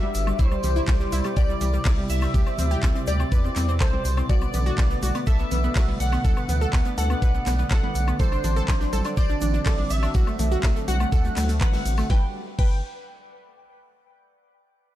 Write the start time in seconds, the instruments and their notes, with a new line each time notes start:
Already playing: analog synth pad G3 D4 F#4 B4, synth texture D5 D6, synth pluck E5, analog synth lead E5
0.03 synth arpeggio sound G3, high conga
0.14 analog synth bass G1, open hi-hat, tambourine, shaker
0.27 synth arpeggio sound G3, high woodblock, shaker
0.39 analog synth bass C2, analog synth pad B2 C3 E4, synth arpeggio sound E4, analog synth lead C5, synth pluck C5, kick, tambourine, high conga, shaker
0.51 synth arpeggio sound G3, high woodblock, shaker
0.63 analog synth bass C2, synth arpeggio sound G3, open hi-hat, tambourine, low conga, shaker
0.76 synth arpeggio sound E4, high conga, shaker
0.88 analog synth bass C2, synth arpeggio sound G3, kick, snare, clap, tambourine, shaker
1.00 synth arpeggio sound G3, snare, shaker
1.12 analog synth bass C2, synth arpeggio sound E4, open hi-hat, tambourine, high conga, shaker
1.24 synth arpeggio sound G3, closed hi-hat, high woodblock, shaker
1.36 analog synth bass C2, synth arpeggio sound G4, synth pluck D5, analog synth lead D5, kick, tambourine, shaker
1.49 synth arpeggio sound G3, shaker
1.61 analog synth bass C2, synth arpeggio sound G3, open hi-hat, tambourine, high conga, low conga, shaker
1.73 synth arpeggio sound G3, shaker
1.85 analog synth bass C2, synth arpeggio sound E4, kick, snare, clap, open hi-hat, shaker
1.98 synth arpeggio sound G3, high conga
2.09 analog synth bass C2, synth pluck E5, analog synth lead E5, open hi-hat, tambourine, shaker
2.21 synth arpeggio sound G3, snare, high woodblock, shaker
2.34 analog synth bass D2, synth arpeggio sound G4, kick, tambourine, high conga, shaker
2.46 synth arpeggio sound C4, high woodblock, shaker
2.58 analog synth bass D2, synth arpeggio sound C4, open hi-hat, tambourine, low conga, shaker
2.70 synth arpeggio sound G4, high conga, shaker
2.83 analog synth bass D2, synth arpeggio sound C4, kick, snare, clap, tambourine, shaker
2.95 synth arpeggio sound C4, closed hi-hat, shaker
3.07 analog synth bass D2, synth arpeggio sound G4, analog synth lead D5, synth pluck D5, open hi-hat, tambourine, high conga, shaker
3.20 synth arpeggio sound C4, high woodblock, shaker
3.32 analog synth bass E2, synth arpeggio sound B4, kick, tambourine, shaker
3.44 synth arpeggio sound C4, shaker
3.56 analog synth bass E2, synth arpeggio sound C4, snare, clap, open hi-hat, tambourine, high conga, shaker
3.69 synth arpeggio sound C4, shaker
3.80 analog synth bass C2, synth arpeggio sound A4, synth pluck C5, analog synth lead C5, kick, snare, clap, tambourine, shaker
3.93 synth arpeggio sound C4, high conga
4.05 analog synth bass C2, open hi-hat, tambourine, shaker
4.17 synth arpeggio sound C4, high woodblock, shaker
4.29 analog synth bass B1, analog synth pad D3 A3, synth arpeggio sound F#4, synth pluck D5, analog synth lead D5, kick, tambourine, high conga, shaker
4.41 synth arpeggio sound B3, high woodblock, shaker
4.54 analog synth bass B1, synth arpeggio sound B3, open hi-hat, tambourine, low conga, shaker
4.66 synth arpeggio sound F#4, high conga, shaker
4.78 analog synth bass B1, synth arpeggio sound B3, kick, snare, clap, tambourine, shaker
4.90 synth arpeggio sound B3, snare, shaker
5.02 analog synth bass B1, synth arpeggio sound F#4, open hi-hat, tambourine, high conga, shaker
5.15 synth arpeggio sound B3, closed hi-hat, high woodblock, shaker
5.27 analog synth bass B1, synth arpeggio sound A4, synth pluck E5, analog synth lead E5, kick, tambourine, shaker
5.39 synth arpeggio sound B3, shaker
5.51 analog synth bass B1, synth arpeggio sound B3, open hi-hat, tambourine, high conga, low conga, shaker
5.63 synth arpeggio sound B3, shaker
5.75 analog synth bass B1, synth arpeggio sound F#4, kick, snare, clap, open hi-hat, shaker
5.88 synth arpeggio sound B3, high conga
6.00 analog synth bass B1, analog synth lead F#5, synth pluck F#5, open hi-hat, tambourine, shaker
6.12 synth arpeggio sound B3, snare, high woodblock, shaker
6.25 analog synth bass D2, synth arpeggio sound A4, kick, tambourine, high conga, shaker
6.37 synth arpeggio sound B3, high woodblock, shaker
6.49 analog synth bass D2, synth arpeggio sound B3, open hi-hat, tambourine, low conga, shaker
6.61 synth arpeggio sound A4, high conga, shaker
6.73 analog synth bass D2, synth arpeggio sound B3, kick, snare, clap, tambourine, shaker
6.85 synth arpeggio sound B3, closed hi-hat, shaker
6.98 analog synth bass D2, synth arpeggio sound A4, analog synth lead F#5, synth pluck F#5, open hi-hat, tambourine, high conga, shaker
7.10 synth arpeggio sound B3, high woodblock, shaker
7.22 analog synth bass B1, synth arpeggio sound B4, kick, tambourine, shaker
7.34 synth arpeggio sound B3, shaker
7.46 analog synth bass B1, synth arpeggio sound B3, snare, clap, open hi-hat, tambourine, high conga, shaker
7.59 synth arpeggio sound B3, shaker
7.70 analog synth bass B1, synth arpeggio sound A4, synth pluck F#5, analog synth lead F#5, kick, snare, clap, tambourine, shaker
7.83 synth arpeggio sound B3, high conga
7.95 analog synth bass B1, open hi-hat, tambourine, shaker
8.08 synth arpeggio sound B3, high woodblock, shaker
8.19 analog synth bass A1, analog synth pad F#3 C4, synth arpeggio sound A4, analog synth lead C5, synth pluck C5, kick, tambourine, high conga, shaker
8.32 synth arpeggio sound D4, high woodblock, shaker
8.44 analog synth bass A1, synth arpeggio sound D4, open hi-hat, tambourine, low conga, shaker
8.56 synth arpeggio sound A4, high conga, shaker
8.68 analog synth bass A1, synth arpeggio sound D4, kick, snare, clap, tambourine, shaker
8.81 synth arpeggio sound D4, snare, shaker
8.93 analog synth bass A1, synth arpeggio sound A4, open hi-hat, tambourine, high conga, shaker
9.04 synth arpeggio sound D4, closed hi-hat, high woodblock, shaker
9.17 analog synth bass A1, synth arpeggio sound C5, analog synth lead D5, synth pluck D5, kick, tambourine, shaker
9.29 synth arpeggio sound D4, shaker
9.41 analog synth bass A1, synth arpeggio sound D4, open hi-hat, tambourine, high conga, low conga, shaker
9.54 synth arpeggio sound D4, shaker
9.66 analog synth bass A1, synth arpeggio sound A4, kick, snare, clap, open hi-hat, shaker
9.78 synth arpeggio sound D4, high conga
9.90 analog synth bass A1, analog synth lead E5, synth pluck E5, open hi-hat, tambourine, shaker
10.03 synth arpeggio sound D4, snare, high woodblock, shaker
10.14 analog synth bass B1, synth arpeggio sound F#4, kick, tambourine, high conga, shaker
10.27 synth arpeggio sound A3, high woodblock, shaker
10.39 analog synth bass B1, synth arpeggio sound A3, open hi-hat, low conga, shaker
10.51 synth arpeggio sound F#4, high conga, shaker
10.63 analog synth bass B1, synth arpeggio sound A3, kick, snare, clap, tambourine, shaker
10.76 synth arpeggio sound A3, closed hi-hat, shaker
10.88 analog synth bass B1, synth arpeggio sound F#4, analog synth lead F#5, synth pluck F#5, open hi-hat, tambourine, high conga, shaker
11.00 synth arpeggio sound A3, high woodblock, shaker
11.12 analog synth bass D2, synth arpeggio sound A4, kick, tambourine, shaker
11.25 synth arpeggio sound A3, shaker
11.36 analog synth bass D2, synth arpeggio sound A3, snare, clap, open hi-hat, high conga, shaker
11.49 synth arpeggio sound A3, open hi-hat, shaker
11.61 analog synth bass A1, synth arpeggio sound B4, analog synth lead F#5, synth pluck F#5, kick, clap, tambourine, shaker
11.72 synth arpeggio sound A3, snare, open hi-hat, high conga, shaker
11.86 analog synth bass A1, open hi-hat, shaker
11.97 synth arpeggio sound A3, tambourine, high woodblock, shaker
12.10 analog synth bass G1, analog synth pad G3 D4 F#4 B4, synth arpeggio sound B4, analog synth lead G5, synth pluck G5, kick, snare
12.58 analog synth bass G1, synth arpeggio sound B4, synth pluck G5, analog synth lead G5, kick, crash